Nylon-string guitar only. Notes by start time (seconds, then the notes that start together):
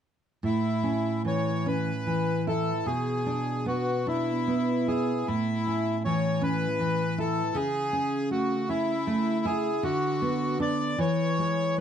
0.43 A2
0.83 C#4
1.25 E3
1.66 C#4
2.07 E3
2.47 E4
2.86 B2
3.26 D4
3.66 B3
4.07 D4
4.47 B3
4.88 E4
5.28 A2
5.67 C#4
6.05 E3
6.42 C#4
6.79 E3
7.18 E4
7.54 C#3
7.93 C#4
8.31 A3
8.69 C#4
9.07 A3
9.45 E4
9.83 D3
10.22 B3
10.60 B3 D4
10.98 E3
11.39 G#3